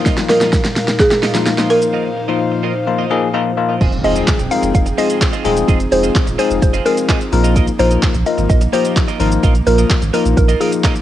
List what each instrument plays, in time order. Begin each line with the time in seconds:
Already playing: analog synth pad A#2 F3 D#4 A#4 F5, tine electric piano F3 A#3 D#4 F4
0.05 clean electric guitar D#4 F4 A#4 D#5, kick, snare, closed hi-hat, shaker
0.17 muted clean electric guitar stroke, snare, closed hi-hat, shaker
0.29 clean electric guitar D#4 F4 A#4 D#5, marimba A#4, snare, open hi-hat, shaker
0.41 clean electric guitar D#4 F4 A#4 D#5, snare, closed hi-hat, shaker
0.52 muted clean electric guitar stroke, kick, snare, closed hi-hat, shaker
0.64 muted clean electric guitar stroke, snare, closed hi-hat, shaker
0.76 snare, open hi-hat, shaker
0.88 muted clean electric guitar stroke, snare, shaker
0.99 marimba G#4, muted clean electric guitar stroke, kick, snare, closed hi-hat, shaker
1.11 muted clean electric guitar stroke, snare, closed hi-hat, shaker
1.23 clean electric guitar D#4 F4 A#4 D#5, snare, open hi-hat, shaker
1.34 tine electric piano F3 A#3 D#4 F4, clean electric guitar D#4 F4 A#4 D#5, snare, closed hi-hat, shaker
1.46 muted clean electric guitar stroke, snare, closed hi-hat, shaker
1.58 tine electric piano F3 A#3 D#4 F4, clean electric guitar D#4 F4 A#4 D#5, snare, closed hi-hat, shaker
1.70 clean electric guitar D#4 F4 A#4 D#5, marimba A#4, analog synth pad C5, open hi-hat, shaker
1.82 closed hi-hat, shaker
1.93 clean electric guitar D#4 F4 A#4 D#5
2.05 muted clean electric guitar stroke
2.17 muted clean electric guitar stroke
2.28 tine electric piano F3 A#3 D#4 F4, clean electric guitar D#4 F4 A#4 D#5
2.40 muted clean electric guitar stroke
2.52 muted clean electric guitar stroke
2.63 clean electric guitar D#4 F4 A#4 D#5
2.75 muted clean electric guitar stroke
2.87 tine electric piano F3 A#3 D#4 F4, muted clean electric guitar stroke
2.98 clean electric guitar D#4 F4 A#4 D#5
3.10 tine electric piano F3 A#3 D#4 G#4, clean electric guitar D#4 F4 A#4 D#5
3.22 muted clean electric guitar stroke
3.34 tine electric piano F3 A#3 D#4 F4, clean electric guitar D#4 F4 A#4 D#5
3.45 muted clean electric guitar stroke
3.57 tine electric piano F3 A#3 D#4 F4, muted clean electric guitar stroke
3.69 clean electric guitar D#4 F4 A#4 D#5
3.81 sub bass F1, analog synth pad F3 C4 D#4 G#4 G5, clean electric guitar C4 F4 G#4 D#5, kick, closed hi-hat, crash, impact, shaker
3.92 muted clean electric guitar stroke, closed hi-hat, shaker
4.04 sub bass F1, tine electric piano G#3 C4 D#4 F4 G#4, clean electric guitar C4 F4 G#4 D#5, synth pluck D#5, open hi-hat, shaker
4.16 clean electric guitar C4 F4 G#4 D#5, closed hi-hat, shaker
4.27 muted clean electric guitar stroke, kick, clap, closed hi-hat, shaker
4.39 sub bass D#1, muted clean electric guitar stroke, closed hi-hat, shaker
4.51 tine electric piano G#3 C4 D#4 F4 A#4, synth pluck F5, open hi-hat, shaker
4.63 sub bass F1, muted clean electric guitar stroke, closed hi-hat, shaker
4.74 sub bass F1, synth pluck F5, muted clean electric guitar stroke, kick, closed hi-hat, shaker
4.86 muted clean electric guitar stroke, closed hi-hat, shaker
4.98 tine electric piano G#3 C4 D#4 F4 G#4, clean electric guitar C4 F4 G#4 D#5, synth pluck D#5, open hi-hat, shaker
5.09 clean electric guitar C4 F4 G#4 D#5, closed hi-hat, shaker
5.21 muted clean electric guitar stroke, kick, clap, closed hi-hat, shaker
5.33 clean electric guitar C4 F4 G#4 D#5, closed hi-hat, shaker
5.44 sub bass D#1, tine electric piano G#3 C4 D#4 F4 G#4, clean electric guitar C4 F4 G#4 D#5, open hi-hat, shaker
5.56 muted clean electric guitar stroke, closed hi-hat, shaker
5.68 sub bass F1, clean electric guitar C4 F4 G#4 D#5, analog synth pad F4, kick, closed hi-hat, shaker
5.80 muted clean electric guitar stroke, closed hi-hat, shaker
5.91 sub bass F1, tine electric piano G#3 C4 D#4 F4 G#4, synth pluck C5, muted clean electric guitar stroke, open hi-hat, shaker
6.03 clean electric guitar C4 F4 G#4 D#5, closed hi-hat, shaker
6.15 muted clean electric guitar stroke, kick, clap, closed hi-hat, shaker
6.27 sub bass D#1, muted clean electric guitar stroke, closed hi-hat, shaker
6.38 tine electric piano G#3 C4 D#4 F4 G#4, clean electric guitar C4 F4 G#4 D#5, synth pluck C5, open hi-hat, shaker
6.50 sub bass F1, muted clean electric guitar stroke, closed hi-hat, shaker
6.62 sub bass F1, synth pluck C5, muted clean electric guitar stroke, kick, closed hi-hat, shaker
6.73 clean electric guitar C4 F4 G#4 D#5, closed hi-hat, shaker
6.85 tine electric piano G#3 C4 D#4 F4 G#4, clean electric guitar C4 F4 G#4 D#5, synth pluck A#4, open hi-hat, shaker
6.97 muted clean electric guitar stroke, closed hi-hat, shaker
7.09 clean electric guitar C4 F4 G#4 D#5, kick, clap, closed hi-hat, shaker
7.20 muted clean electric guitar stroke, closed hi-hat, shaker
7.32 sub bass A#1, tine electric piano F3 A#3 D#4 F4 A#4, analog synth pad A#3, muted clean electric guitar stroke, open hi-hat, shaker
7.44 clean electric guitar A#3 F4 A#4 D#5, closed hi-hat, shaker
7.56 clean electric guitar A#3 F4 A#4 D#5, kick, closed hi-hat, shaker
7.67 muted clean electric guitar stroke, closed hi-hat, shaker
7.79 sub bass A#1, tine electric piano F3 A#3 D#4 F4 A#4, clean electric guitar A#3 F4 A#4 D#5, synth pluck C5, open hi-hat, shaker
7.91 clean electric guitar A#3 F4 A#4 D#5, closed hi-hat, shaker
8.02 muted clean electric guitar stroke, kick, clap, closed hi-hat, shaker
8.14 sub bass A#1, muted clean electric guitar stroke, closed hi-hat, shaker
8.26 tine electric piano F3 A#3 D#4 F4 A#4, synth pluck D#5, open hi-hat, shaker
8.38 sub bass G#1, muted clean electric guitar stroke, closed hi-hat, shaker
8.49 sub bass A#1, synth pluck D#5, muted clean electric guitar stroke, kick, closed hi-hat, shaker
8.61 muted clean electric guitar stroke, closed hi-hat, shaker
8.73 tine electric piano F3 A#3 D#4 F4 G4, clean electric guitar A#3 F4 A#4 D#5, synth pluck C5, open hi-hat, shaker
8.84 clean electric guitar A#3 F4 A#4 D#5, closed hi-hat, shaker
8.96 muted clean electric guitar stroke, kick, clap, closed hi-hat, shaker
9.08 clean electric guitar A#3 F4 A#4 D#5, closed hi-hat, shaker
9.20 sub bass G#1, tine electric piano F3 A#3 D#4 F4 A#4, clean electric guitar A#3 F4 A#4 D#5, open hi-hat, shaker
9.31 muted clean electric guitar stroke, closed hi-hat, shaker
9.43 sub bass A#1, clean electric guitar A#3 F4 A#4 D#5, kick, closed hi-hat, shaker
9.55 muted clean electric guitar stroke, closed hi-hat, shaker
9.67 sub bass A#1, tine electric piano F3 A#3 D#4 F4 A#4, synth pluck A#4, muted clean electric guitar stroke, open hi-hat, shaker
9.78 clean electric guitar A#3 F4 A#4 D#5, closed hi-hat, shaker
9.90 muted clean electric guitar stroke, kick, clap, closed hi-hat, shaker
10.02 sub bass G#1, muted clean electric guitar stroke, closed hi-hat, shaker
10.13 tine electric piano F3 A#3 D#4 F4 A#4, clean electric guitar A#3 F4 A#4 D#5, synth pluck A#4, open hi-hat, shaker
10.25 sub bass A#1, muted clean electric guitar stroke, closed hi-hat, shaker
10.37 sub bass A#1, synth pluck A#4, muted clean electric guitar stroke, kick, closed hi-hat, shaker
10.48 clean electric guitar A#3 F4 A#4 D#5, closed hi-hat, shaker
10.60 tine electric piano F3 A#3 D#4 F4 A#4, clean electric guitar A#3 F4 A#4 D#5, synth pluck G#4, open hi-hat, shaker
10.72 muted clean electric guitar stroke, closed hi-hat, shaker
10.84 clean electric guitar A#3 F4 A#4 D#5, kick, clap, closed hi-hat, shaker
10.95 muted clean electric guitar stroke, closed hi-hat, shaker